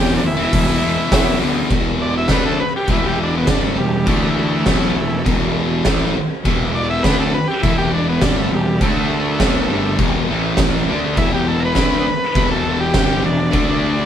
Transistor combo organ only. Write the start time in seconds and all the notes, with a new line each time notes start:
Already playing: G4
0.17 D4
0.26 E4
2.02 D5
2.18 E5
2.32 B4
2.45 A4
2.60 B4
2.76 G4
2.92 E4
3.06 G4
3.23 D4
3.38 B3
3.50 D4
3.66 A3
3.78 G3
4.08 E3 A3
6.75 D5
6.90 E5
7.03 B4
7.20 A4
7.34 B4
7.48 G4
7.62 E4
7.78 G4
7.94 D4
8.09 B3
8.23 D4
8.38 A3
8.53 G3
8.84 A3
11.18 E4
11.34 G4
11.48 A4
11.60 A#4
11.65 B4
12.51 A4
12.80 G4
13.25 D4